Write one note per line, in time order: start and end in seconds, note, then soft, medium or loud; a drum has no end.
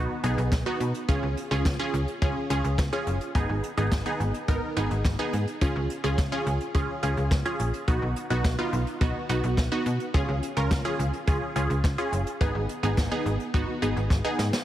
0.00 0.13 B3 medium
0.00 0.13 D#4 medium
0.00 0.13 F#4 medium
0.24 0.36 B1 loud
0.24 0.50 B3 medium
0.24 0.50 D#4 medium
0.24 0.50 G#4 medium
0.24 closed hi-hat medium
0.38 0.50 B1 loud
0.38 closed hi-hat medium
0.52 0.64 B1 loud
0.52 kick loud
0.52 snare loud
0.52 closed hi-hat medium
0.66 0.92 B3 medium
0.66 0.92 D#4 medium
0.66 0.92 F#4 medium
0.80 0.93 B2 medium
0.80 closed hi-hat medium
0.94 closed hi-hat medium
1.08 1.21 C#2 loud
1.08 1.35 C#4 medium
1.08 1.35 F4 medium
1.08 1.35 G#4 medium
1.08 kick loud
1.08 closed hi-hat medium
1.23 1.35 C#2 medium
1.37 closed hi-hat medium
1.51 1.64 C#2 loud
1.51 1.68 C#4 medium
1.51 1.68 F4 medium
1.51 1.68 G#4 medium
1.51 closed hi-hat medium
1.65 1.78 C#2 loud
1.65 kick loud
1.65 snare loud
1.65 closed hi-hat medium
1.79 2.05 C#4 medium
1.79 2.05 F4 medium
1.79 2.05 G#4 loud
1.94 2.06 C#2 loud
1.94 closed hi-hat medium
2.08 closed hi-hat soft
2.22 2.34 C#2 loud
2.22 2.39 C#4 medium
2.22 2.39 F4 medium
2.22 2.39 G#4 medium
2.22 kick loud
2.22 closed hi-hat medium
2.50 2.63 C#2 loud
2.50 2.76 C#4 medium
2.50 2.76 F4 medium
2.50 2.76 G#4 medium
2.50 closed hi-hat medium
2.64 2.77 C#2 loud
2.64 closed hi-hat soft
2.78 2.91 C#2 loud
2.78 kick loud
2.78 snare medium
2.78 closed hi-hat medium
2.93 3.19 C#4 medium
2.93 3.19 F4 medium
2.93 3.19 G#4 loud
3.07 3.19 F#1 medium
3.07 closed hi-hat medium
3.21 closed hi-hat medium
3.35 3.47 G#1 loud
3.35 3.61 B3 medium
3.35 3.61 D#4 medium
3.35 3.61 G#4 loud
3.35 kick loud
3.35 closed hi-hat medium
3.49 3.62 G#1 medium
3.63 closed hi-hat medium
3.77 3.90 G#1 loud
3.77 3.95 B3 medium
3.77 3.95 D#4 medium
3.77 3.95 G#4 medium
3.77 closed hi-hat medium
3.92 4.04 G#1 loud
3.92 kick loud
3.92 snare loud
3.92 closed hi-hat medium
4.06 4.32 B3 medium
4.06 4.32 D#4 medium
4.06 4.32 G#4 loud
4.20 4.32 G#1 loud
4.20 closed hi-hat medium
4.34 closed hi-hat soft
4.48 4.61 G#1 medium
4.48 4.66 B3 medium
4.48 4.66 D#4 medium
4.48 4.66 A#4 medium
4.48 kick loud
4.48 closed hi-hat medium
4.77 4.89 G#1 loud
4.77 5.03 B3 medium
4.77 5.03 D#4 medium
4.77 5.03 G#4 medium
4.77 closed hi-hat medium
4.91 5.03 G#1 medium
4.91 closed hi-hat soft
5.05 5.17 G#1 loud
5.05 kick loud
5.05 snare medium
5.05 closed hi-hat medium
5.19 5.45 B3 medium
5.19 5.45 D#4 medium
5.19 5.45 G#4 loud
5.33 5.46 G#2 medium
5.33 closed hi-hat medium
5.47 closed hi-hat medium
5.61 5.74 C#2 loud
5.61 5.87 C#4 medium
5.61 5.87 F4 medium
5.61 5.87 G#4 medium
5.61 kick loud
5.61 closed hi-hat medium
5.76 5.88 C#2 medium
5.90 closed hi-hat medium
6.04 6.16 C#2 medium
6.04 6.21 C#4 medium
6.04 6.21 F4 medium
6.04 6.21 G#4 medium
6.04 closed hi-hat medium
6.18 6.30 C#2 loud
6.18 kick loud
6.18 snare loud
6.18 closed hi-hat medium
6.32 6.58 C#4 medium
6.32 6.58 F4 medium
6.32 6.58 G#4 loud
6.46 6.59 C#2 loud
6.46 closed hi-hat medium
6.60 closed hi-hat soft
6.75 6.87 C#2 medium
6.75 6.92 C#4 medium
6.75 6.92 F4 medium
6.75 6.92 G#4 medium
6.75 kick loud
6.75 closed hi-hat medium
7.03 7.15 C#2 loud
7.03 7.29 C#4 medium
7.03 7.29 F4 medium
7.03 7.29 G#4 medium
7.03 closed hi-hat medium
7.17 7.30 C#2 medium
7.17 closed hi-hat soft
7.31 7.44 C#2 loud
7.31 kick loud
7.31 snare loud
7.31 closed hi-hat medium
7.46 7.71 C#4 medium
7.46 7.71 F4 medium
7.46 7.71 G#4 loud
7.60 7.72 A#1 medium
7.60 closed hi-hat medium
7.74 closed hi-hat medium
7.88 8.00 B1 loud
7.88 8.14 B3 medium
7.88 8.14 D#4 medium
7.88 8.14 F#4 loud
7.88 kick loud
7.88 closed hi-hat medium
8.02 8.14 B1 medium
8.16 closed hi-hat medium
8.30 8.43 B1 loud
8.30 8.48 B3 medium
8.30 8.48 D#4 medium
8.30 8.48 F#4 loud
8.30 closed hi-hat medium
8.44 8.57 B1 loud
8.44 kick loud
8.44 snare loud
8.44 closed hi-hat medium
8.59 8.85 B3 medium
8.59 8.85 D#4 medium
8.59 8.85 F4 medium
8.73 8.85 B1 loud
8.73 closed hi-hat medium
8.87 closed hi-hat soft
9.01 9.13 B1 loud
9.01 9.18 B3 medium
9.01 9.18 D#4 medium
9.01 9.18 F#4 medium
9.01 kick loud
9.01 closed hi-hat medium
9.29 9.42 B1 loud
9.29 9.55 B3 medium
9.29 9.55 D#4 medium
9.29 9.55 F#4 medium
9.29 closed hi-hat medium
9.43 9.56 B1 loud
9.43 closed hi-hat soft
9.57 9.70 B1 medium
9.57 kick loud
9.57 snare medium
9.57 closed hi-hat medium
9.72 9.98 B3 medium
9.72 9.98 D#4 medium
9.72 9.98 F#4 loud
9.86 9.98 B2 loud
9.86 closed hi-hat medium
10.00 closed hi-hat medium
10.14 10.27 C#2 loud
10.14 10.40 C#4 medium
10.14 10.40 F4 medium
10.14 10.40 G#4 medium
10.14 kick loud
10.14 closed hi-hat medium
10.28 10.41 C#2 loud
10.43 closed hi-hat medium
10.57 10.69 C#2 loud
10.57 10.74 C#4 medium
10.57 10.74 F4 medium
10.57 10.74 A#4 medium
10.57 closed hi-hat medium
10.71 10.83 C#2 loud
10.71 kick loud
10.71 snare loud
10.71 closed hi-hat medium
10.85 11.11 C#4 medium
10.85 11.11 F4 medium
10.85 11.11 G#4 loud
10.99 11.12 C#2 loud
10.99 closed hi-hat medium
11.13 closed hi-hat soft
11.27 11.40 C#2 loud
11.27 11.45 C#4 medium
11.27 11.45 F4 medium
11.27 11.45 G#4 loud
11.27 kick loud
11.27 closed hi-hat medium
11.56 11.68 C#2 loud
11.56 11.82 C#4 medium
11.56 11.82 F4 medium
11.56 11.82 G#4 medium
11.56 closed hi-hat medium
11.70 11.82 C#2 loud
11.70 closed hi-hat soft
11.84 11.96 C#2 loud
11.84 kick loud
11.84 snare loud
11.84 closed hi-hat medium
11.98 12.24 C#4 medium
11.98 12.24 F4 medium
11.98 12.24 G#4 loud
12.12 12.25 F#1 medium
12.12 closed hi-hat medium
12.27 closed hi-hat medium
12.41 12.53 G#1 loud
12.41 12.67 B3 medium
12.41 12.67 D#4 medium
12.41 12.67 G#4 medium
12.41 kick loud
12.41 closed hi-hat medium
12.55 12.67 G#1 medium
12.69 closed hi-hat medium
12.83 12.96 G#1 loud
12.83 13.00 B3 medium
12.83 13.00 D#4 medium
12.83 13.01 G#4 medium
12.83 closed hi-hat medium
12.97 13.10 G#1 loud
12.97 kick loud
12.97 snare loud
12.97 closed hi-hat medium
13.11 13.37 B3 medium
13.11 13.37 D#4 medium
13.11 13.37 G#4 medium
13.26 13.38 G#1 loud
13.26 closed hi-hat medium
13.40 closed hi-hat soft
13.54 13.66 G#1 loud
13.54 13.71 B3 medium
13.54 13.71 D#4 medium
13.54 13.71 F#4 medium
13.54 kick loud
13.54 closed hi-hat medium
13.82 13.95 G#1 loud
13.82 14.08 B3 medium
13.82 14.08 D#4 medium
13.82 14.08 G#4 medium
13.82 closed hi-hat medium
13.96 14.09 G#1 medium
13.96 closed hi-hat soft
14.10 14.23 G#1 loud
14.10 kick loud
14.10 snare medium
14.25 14.51 B3 medium
14.25 14.51 D#4 medium
14.25 14.51 G#4 loud
14.39 14.51 G#2 medium
14.39 snare medium
14.53 snare medium